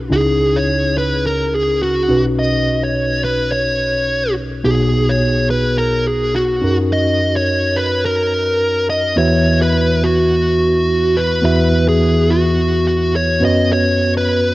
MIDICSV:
0, 0, Header, 1, 3, 480
1, 0, Start_track
1, 0, Tempo, 566038
1, 98, Time_signature, 4, 2, 24, 8
1, 12333, End_track
2, 0, Start_track
2, 0, Title_t, "Lead electric guitar"
2, 0, Program_c, 0, 29
2, 109, Note_on_c, 0, 68, 78
2, 478, Note_on_c, 0, 73, 83
2, 487, Note_off_c, 0, 68, 0
2, 827, Note_off_c, 0, 73, 0
2, 831, Note_on_c, 0, 71, 81
2, 1068, Note_off_c, 0, 71, 0
2, 1072, Note_on_c, 0, 70, 89
2, 1289, Note_off_c, 0, 70, 0
2, 1309, Note_on_c, 0, 68, 85
2, 1544, Note_off_c, 0, 68, 0
2, 1547, Note_on_c, 0, 66, 85
2, 1889, Note_off_c, 0, 66, 0
2, 2026, Note_on_c, 0, 75, 93
2, 2402, Note_on_c, 0, 73, 94
2, 2405, Note_off_c, 0, 75, 0
2, 2748, Note_off_c, 0, 73, 0
2, 2751, Note_on_c, 0, 71, 90
2, 2983, Note_off_c, 0, 71, 0
2, 2986, Note_on_c, 0, 73, 85
2, 3668, Note_off_c, 0, 73, 0
2, 3945, Note_on_c, 0, 68, 84
2, 4320, Note_on_c, 0, 73, 89
2, 4324, Note_off_c, 0, 68, 0
2, 4639, Note_off_c, 0, 73, 0
2, 4667, Note_on_c, 0, 71, 89
2, 4898, Note_off_c, 0, 71, 0
2, 4902, Note_on_c, 0, 70, 89
2, 5143, Note_on_c, 0, 68, 85
2, 5147, Note_off_c, 0, 70, 0
2, 5386, Note_off_c, 0, 68, 0
2, 5390, Note_on_c, 0, 66, 85
2, 5730, Note_off_c, 0, 66, 0
2, 5873, Note_on_c, 0, 75, 98
2, 6240, Note_off_c, 0, 75, 0
2, 6243, Note_on_c, 0, 73, 93
2, 6583, Note_on_c, 0, 71, 87
2, 6595, Note_off_c, 0, 73, 0
2, 6825, Note_off_c, 0, 71, 0
2, 6828, Note_on_c, 0, 70, 86
2, 7509, Note_off_c, 0, 70, 0
2, 7546, Note_on_c, 0, 75, 90
2, 7766, Note_off_c, 0, 75, 0
2, 7783, Note_on_c, 0, 73, 86
2, 8127, Note_off_c, 0, 73, 0
2, 8161, Note_on_c, 0, 71, 88
2, 8511, Note_on_c, 0, 66, 84
2, 8514, Note_off_c, 0, 71, 0
2, 9470, Note_on_c, 0, 71, 85
2, 9493, Note_off_c, 0, 66, 0
2, 9704, Note_off_c, 0, 71, 0
2, 9714, Note_on_c, 0, 71, 87
2, 10076, Note_off_c, 0, 71, 0
2, 10079, Note_on_c, 0, 68, 82
2, 10433, Note_off_c, 0, 68, 0
2, 10433, Note_on_c, 0, 66, 84
2, 10907, Note_off_c, 0, 66, 0
2, 10917, Note_on_c, 0, 66, 83
2, 11131, Note_off_c, 0, 66, 0
2, 11160, Note_on_c, 0, 73, 90
2, 11396, Note_off_c, 0, 73, 0
2, 11405, Note_on_c, 0, 75, 102
2, 11615, Note_off_c, 0, 75, 0
2, 11643, Note_on_c, 0, 73, 88
2, 11977, Note_off_c, 0, 73, 0
2, 12020, Note_on_c, 0, 71, 94
2, 12333, Note_off_c, 0, 71, 0
2, 12333, End_track
3, 0, Start_track
3, 0, Title_t, "Tine electric piano"
3, 0, Program_c, 1, 4
3, 0, Control_c, 1, 64, 127
3, 83, Note_on_c, 1, 61, 61
3, 88, Note_on_c, 1, 63, 55
3, 89, Note_on_c, 1, 49, 58
3, 93, Note_on_c, 1, 37, 63
3, 97, Note_on_c, 1, 64, 58
3, 101, Note_on_c, 1, 68, 63
3, 110, Control_c, 1, 64, 0
3, 273, Control_c, 1, 64, 127
3, 1737, Note_off_c, 1, 61, 0
3, 1739, Note_off_c, 1, 63, 0
3, 1740, Note_off_c, 1, 49, 0
3, 1742, Note_off_c, 1, 37, 0
3, 1744, Note_off_c, 1, 64, 0
3, 1746, Note_off_c, 1, 68, 0
3, 1765, Note_on_c, 1, 61, 56
3, 1770, Note_on_c, 1, 63, 55
3, 1773, Note_on_c, 1, 35, 55
3, 1773, Note_on_c, 1, 47, 57
3, 1778, Note_on_c, 1, 66, 51
3, 1785, Note_on_c, 1, 71, 63
3, 1789, Control_c, 1, 64, 0
3, 1940, Control_c, 1, 64, 127
3, 3658, Note_off_c, 1, 61, 0
3, 3660, Note_off_c, 1, 63, 0
3, 3662, Note_off_c, 1, 35, 0
3, 3662, Note_off_c, 1, 47, 0
3, 3664, Note_off_c, 1, 66, 0
3, 3668, Note_off_c, 1, 71, 0
3, 3934, Note_on_c, 1, 59, 67
3, 3940, Note_on_c, 1, 63, 58
3, 3941, Note_on_c, 1, 47, 66
3, 3944, Note_on_c, 1, 35, 65
3, 3945, Note_on_c, 1, 66, 60
3, 3949, Control_c, 1, 64, 0
3, 3951, Note_on_c, 1, 68, 71
3, 4090, Control_c, 1, 64, 127
3, 5582, Note_off_c, 1, 59, 0
3, 5585, Note_off_c, 1, 63, 0
3, 5586, Note_off_c, 1, 47, 0
3, 5587, Note_off_c, 1, 35, 0
3, 5588, Note_off_c, 1, 66, 0
3, 5591, Note_off_c, 1, 68, 0
3, 5609, Note_on_c, 1, 61, 62
3, 5612, Note_on_c, 1, 63, 54
3, 5617, Note_on_c, 1, 42, 60
3, 5620, Note_on_c, 1, 66, 54
3, 5628, Control_c, 1, 64, 0
3, 5629, Note_on_c, 1, 70, 66
3, 5776, Control_c, 1, 64, 127
3, 7500, Note_off_c, 1, 61, 0
3, 7501, Note_off_c, 1, 63, 0
3, 7503, Note_off_c, 1, 42, 0
3, 7505, Note_off_c, 1, 66, 0
3, 7510, Note_off_c, 1, 70, 0
3, 7768, Note_on_c, 1, 59, 65
3, 7776, Note_on_c, 1, 40, 65
3, 7776, Note_on_c, 1, 52, 68
3, 7776, Note_on_c, 1, 64, 62
3, 7779, Note_on_c, 1, 66, 63
3, 7784, Note_on_c, 1, 71, 59
3, 7788, Control_c, 1, 64, 0
3, 7789, Note_on_c, 1, 76, 69
3, 7939, Control_c, 1, 64, 127
3, 9659, Note_off_c, 1, 59, 0
3, 9663, Note_off_c, 1, 40, 0
3, 9663, Note_off_c, 1, 52, 0
3, 9663, Note_off_c, 1, 64, 0
3, 9664, Note_off_c, 1, 66, 0
3, 9667, Note_off_c, 1, 71, 0
3, 9670, Note_off_c, 1, 76, 0
3, 9684, Note_on_c, 1, 59, 66
3, 9693, Note_on_c, 1, 52, 67
3, 9693, Note_on_c, 1, 64, 59
3, 9698, Note_on_c, 1, 40, 66
3, 9698, Note_on_c, 1, 66, 58
3, 9702, Note_on_c, 1, 71, 62
3, 9708, Note_on_c, 1, 76, 73
3, 11337, Note_off_c, 1, 59, 0
3, 11342, Note_off_c, 1, 52, 0
3, 11342, Note_off_c, 1, 64, 0
3, 11344, Note_off_c, 1, 40, 0
3, 11344, Note_off_c, 1, 66, 0
3, 11346, Note_off_c, 1, 71, 0
3, 11349, Note_off_c, 1, 76, 0
3, 11368, Note_on_c, 1, 59, 62
3, 11373, Note_on_c, 1, 61, 57
3, 11377, Note_on_c, 1, 42, 60
3, 11381, Note_on_c, 1, 66, 57
3, 11384, Note_on_c, 1, 71, 59
3, 11390, Control_c, 1, 64, 0
3, 11391, Note_on_c, 1, 73, 68
3, 11541, Control_c, 1, 64, 127
3, 12333, Note_off_c, 1, 42, 0
3, 12333, Note_off_c, 1, 59, 0
3, 12333, Note_off_c, 1, 61, 0
3, 12333, Note_off_c, 1, 66, 0
3, 12333, Note_off_c, 1, 71, 0
3, 12333, Note_off_c, 1, 73, 0
3, 12333, End_track
0, 0, End_of_file